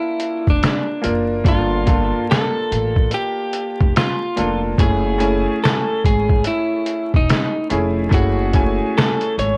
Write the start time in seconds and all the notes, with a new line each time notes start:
Already playing: A#3 D4 E4 F4 A4
0.20 closed hi-hat
0.47 F1 D4, kick
0.63 finger snap, snare, closed hi-hat
1.02 F#1 A#3 D4 F4 A#4, closed hi-hat
1.44 G1 A#3 D4 F4 A4, kick, closed hi-hat
1.48 F4
1.86 A#3 D4 F4 A4, kick, closed hi-hat
2.31 A4, finger snap, snare, closed hi-hat
2.71 A1, closed hi-hat
2.96 kick
3.11 G4, closed hi-hat
3.53 closed hi-hat
3.81 F1, kick
3.96 F4, finger snap, snare, closed hi-hat
4.36 F1 A#3 D4 F4 A4, closed hi-hat
4.78 F#1 A3 C#4 E4 G#4, kick, closed hi-hat
5.18 A3 C#4 E4 G#5, closed hi-hat
5.64 A4, finger snap, snare, closed hi-hat
6.04 G#1 G#4, kick, closed hi-hat
6.29 kick
6.44 E4, closed hi-hat
6.86 closed hi-hat
7.14 E1 D#4, kick
7.30 finger snap, snare, closed hi-hat
7.70 F1 A3 C#4 E4 G#4, closed hi-hat
8.09 F#1 A3 C#4 E4 G#4, kick, closed hi-hat
8.14 F#4
8.53 G#3 C#4 E4 G#5, kick, closed hi-hat
8.59 A3
8.98 A4, finger snap, snare, closed hi-hat
9.21 closed hi-hat
9.38 G#1 C#5, closed hi-hat